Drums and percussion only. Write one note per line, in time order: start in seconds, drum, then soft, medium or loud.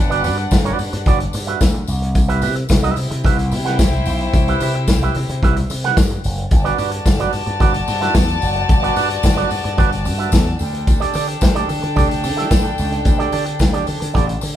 0.12 closed hi-hat soft
0.24 open hi-hat medium
0.24 tambourine medium
0.38 closed hi-hat soft
0.51 kick medium
0.51 snare loud
0.51 closed hi-hat medium
0.51 tambourine medium
0.66 closed hi-hat soft
0.79 open hi-hat medium
0.79 tambourine soft
0.93 closed hi-hat soft
1.06 kick loud
1.06 closed hi-hat medium
1.06 tambourine soft
1.20 closed hi-hat soft
1.33 open hi-hat medium
1.33 tambourine medium
1.48 closed hi-hat soft
1.61 kick loud
1.61 snare loud
1.61 closed hi-hat medium
1.61 tambourine medium
1.74 closed hi-hat soft
1.87 open hi-hat soft
1.87 tambourine medium
2.02 closed hi-hat soft
2.15 kick loud
2.15 closed hi-hat medium
2.15 tambourine soft
2.30 closed hi-hat soft
2.42 open hi-hat medium
2.42 tambourine soft
2.56 closed hi-hat soft
2.69 kick loud
2.69 snare medium
2.69 closed hi-hat medium
2.69 tambourine medium
2.84 closed hi-hat soft
2.96 open hi-hat medium
2.96 tambourine soft
3.12 closed hi-hat soft
3.24 kick loud
3.24 closed hi-hat medium
3.24 tambourine soft
3.39 closed hi-hat soft
3.52 open hi-hat medium
3.52 tambourine medium
3.66 snare soft
3.66 closed hi-hat soft
3.79 kick loud
3.79 snare loud
3.79 closed hi-hat medium
3.79 tambourine medium
3.93 closed hi-hat soft
4.06 open hi-hat soft
4.06 tambourine medium
4.21 closed hi-hat soft
4.33 kick loud
4.33 closed hi-hat medium
4.33 tambourine soft
4.48 closed hi-hat soft
4.60 open hi-hat medium
4.60 tambourine soft
4.74 closed hi-hat medium
4.88 kick loud
4.88 snare loud
4.88 closed hi-hat medium
4.88 tambourine medium
5.02 closed hi-hat soft
5.15 open hi-hat medium
5.29 closed hi-hat soft
5.43 kick loud
5.43 closed hi-hat medium
5.57 closed hi-hat soft
5.70 open hi-hat medium
5.70 tambourine medium
5.84 snare soft
5.84 closed hi-hat soft
5.97 kick loud
5.97 snare loud
5.97 closed hi-hat medium
5.97 tambourine medium
6.10 closed hi-hat soft
6.24 open hi-hat medium
6.24 tambourine soft
6.38 closed hi-hat soft
6.51 kick loud
6.51 closed hi-hat medium
6.51 tambourine medium
6.66 closed hi-hat soft
6.78 open hi-hat medium
6.78 tambourine soft
6.92 closed hi-hat medium
7.06 kick loud
7.06 snare medium
7.06 closed hi-hat medium
7.06 tambourine medium
7.20 closed hi-hat soft
7.33 open hi-hat medium
7.33 tambourine soft
7.47 closed hi-hat soft
7.60 kick loud
7.60 closed hi-hat medium
7.60 tambourine soft
7.74 closed hi-hat soft
7.88 open hi-hat medium
7.88 tambourine medium
8.02 snare soft
8.02 closed hi-hat soft
8.15 kick loud
8.15 snare loud
8.15 closed hi-hat medium
8.15 tambourine medium
8.28 closed hi-hat soft
8.42 open hi-hat medium
8.42 tambourine medium
8.56 closed hi-hat soft
8.69 kick loud
8.69 closed hi-hat medium
8.69 tambourine medium
8.84 closed hi-hat soft
8.96 open hi-hat medium
8.96 tambourine soft
9.10 closed hi-hat soft
9.23 kick loud
9.23 snare medium
9.23 closed hi-hat medium
9.23 tambourine medium
9.38 closed hi-hat soft
9.50 open hi-hat medium
9.50 tambourine soft
9.65 closed hi-hat soft
9.78 kick loud
9.78 closed hi-hat medium
9.78 tambourine soft
9.92 closed hi-hat soft
10.05 open hi-hat medium
10.05 tambourine medium
10.20 closed hi-hat soft
10.32 kick loud
10.32 snare loud
10.32 closed hi-hat medium
10.32 tambourine loud
10.47 closed hi-hat soft
10.59 open hi-hat medium
10.59 tambourine medium
10.75 closed hi-hat soft
10.87 kick loud
10.87 closed hi-hat medium
10.87 tambourine medium
11.02 closed hi-hat soft
11.14 open hi-hat medium
11.14 tambourine medium
11.29 closed hi-hat soft
11.41 kick loud
11.41 snare loud
11.41 closed hi-hat medium
11.41 tambourine medium
11.56 closed hi-hat soft
11.69 open hi-hat medium
11.69 tambourine soft
11.84 closed hi-hat soft
11.96 kick medium
11.96 closed hi-hat medium
11.96 tambourine soft
12.11 closed hi-hat medium
12.24 open hi-hat medium
12.24 tambourine medium
12.38 snare soft
12.38 closed hi-hat soft
12.51 kick loud
12.51 snare loud
12.51 closed hi-hat medium
12.51 tambourine medium
12.64 closed hi-hat soft
12.78 open hi-hat medium
12.78 tambourine medium
12.93 closed hi-hat soft
13.05 kick loud
13.05 closed hi-hat medium
13.05 tambourine medium
13.20 closed hi-hat soft
13.32 open hi-hat medium
13.32 tambourine medium
13.46 closed hi-hat medium
13.59 kick loud
13.59 snare medium
13.59 closed hi-hat medium
13.59 tambourine medium
13.74 closed hi-hat soft
13.87 open hi-hat medium
13.87 tambourine soft
14.02 closed hi-hat soft
14.14 kick loud
14.14 closed hi-hat medium
14.14 tambourine soft
14.29 closed hi-hat soft
14.41 open hi-hat medium
14.41 tambourine medium